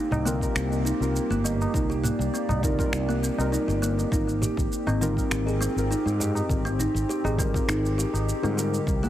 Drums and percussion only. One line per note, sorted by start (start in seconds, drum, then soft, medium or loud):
0.12 mid tom medium
0.12 tabla na medium
0.12 shaker soft
0.26 tabla tin medium
0.26 shaker medium
0.41 kick medium
0.41 tabla na soft
0.41 shaker soft
0.56 finger snap medium
0.56 shaker soft
0.71 tabla tin medium
0.71 shaker soft
0.87 shaker medium
1.02 shaker soft
1.16 shaker soft
1.32 shaker soft
1.45 tabla tin medium
1.45 tabla ge loud
1.45 shaker medium
1.61 tabla na medium
1.61 shaker soft
1.74 kick loud
1.74 shaker soft
1.91 shaker soft
2.04 mid tom medium
2.04 shaker medium
2.21 shaker soft
2.35 shaker soft
2.49 mid tom medium
2.49 tabla na medium
2.49 tabla ge medium
2.49 shaker soft
2.63 kick loud
2.63 tabla tin medium
2.63 tabla ge medium
2.63 shaker medium
2.79 kick loud
2.79 tabla na soft
2.79 shaker soft
2.93 finger snap medium
2.93 shaker soft
3.10 shaker soft
3.24 shaker medium
3.38 tabla na medium
3.38 tabla tin soft
3.38 shaker soft
3.54 shaker soft
3.68 tabla tin medium
3.68 shaker soft
3.83 shaker medium
3.98 tabla tin medium
3.98 shaker soft
4.12 kick loud
4.12 shaker soft
4.29 shaker soft
4.42 mid tom medium
4.42 shaker medium
4.57 kick loud
4.57 shaker soft
4.73 shaker soft
4.87 mid tom medium
4.87 tabla na medium
4.87 shaker soft
5.01 tabla tin medium
5.01 shaker medium
5.17 kick medium
5.17 tabla na soft
5.17 shaker soft
5.31 finger snap medium
5.31 shaker soft
5.46 tabla tin medium
5.46 shaker soft
5.62 shaker medium
5.78 shaker soft
5.92 shaker soft
6.07 shaker soft
6.20 tabla tin medium
6.20 tabla ge loud
6.20 shaker medium
6.35 tabla na medium
6.35 shaker soft
6.49 kick loud
6.49 shaker soft
6.66 shaker soft
6.79 mid tom medium
6.79 shaker medium
6.96 shaker soft
7.10 shaker soft
7.25 mid tom soft
7.25 tabla na medium
7.25 tabla ge medium
7.25 shaker soft
7.39 kick loud
7.39 tabla tin medium
7.39 tabla ge medium
7.39 shaker medium
7.54 kick loud
7.54 tabla na soft
7.54 shaker soft
7.69 finger snap medium
7.69 shaker soft
7.86 shaker soft
7.99 shaker medium
8.13 tabla na soft
8.13 tabla tin soft
8.13 shaker soft
8.29 shaker soft
8.43 tabla tin medium
8.43 shaker soft
8.58 shaker medium
8.73 tabla tin medium
8.73 shaker soft
8.87 kick loud
8.87 shaker soft
9.04 shaker soft